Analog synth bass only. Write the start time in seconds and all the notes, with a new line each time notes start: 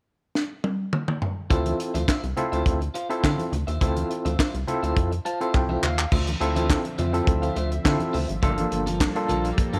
1.50 D2
1.95 D2
2.23 C2
2.52 D2
2.66 D2
3.24 D3
3.52 D2
3.68 D#2
3.81 D2
4.25 D2
4.54 C2
4.83 D2
4.96 F2
5.54 C2
5.83 D#2
6.12 D2
6.41 D2
6.98 F2
7.27 D2
7.56 D2
7.85 D3
8.14 D2
8.30 G#1
8.43 G1
8.72 G1
9.29 A#1
9.58 G2
9.74 G2